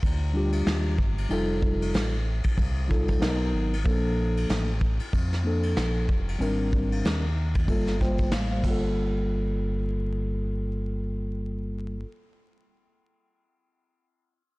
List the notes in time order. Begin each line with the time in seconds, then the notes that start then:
0.03 D2, kick, ride
0.33 G3 D4 F4 G4
0.53 ride
0.66 D#2, snare, hi-hat pedal, ride
0.99 G1, kick
1.18 ride
1.29 F1 G3 D#4 F4 A4, ride
1.62 kick
1.82 ride
1.94 A1, snare, hi-hat pedal, ride
2.44 kick, ride
2.58 C2, kick, ride
2.88 G3 D#4 F4 A4, kick, snare
3.08 kick, ride
3.19 B1 F#3 B3 D#4, snare, hi-hat pedal, ride
3.23 A#4
3.54 G#1
3.73 ride
3.84 A#1 F3 A#3 D4 A4, kick, ride
4.37 ride
4.49 A1, snare, hi-hat pedal, ride
4.81 kick
4.99 muted fingered electric bass stroke, ride
5.13 F2, kick, ride
5.33 snare
5.43 F3 A#3 D4 A4
5.63 ride
5.77 A#1, snare, hi-hat pedal, ride
6.09 F1, kick
6.29 ride
6.39 G#1 G3 C4 D4 A#4, ride
6.73 kick
6.92 ride
7.04 D#2, snare, hi-hat pedal, ride
7.54 kick, ride
7.66 G1 G3 A#3 F4 A4, kick, ride
7.87 snare
7.99 G3 A#3 F4 C5 G5, kick, snare
8.18 kick, ride
8.31 A1 F5, snare, hi-hat pedal, ride
8.51 C5 F5
8.56 G3
8.61 G1 A#3, kick, crash
8.66 F4
8.70 A4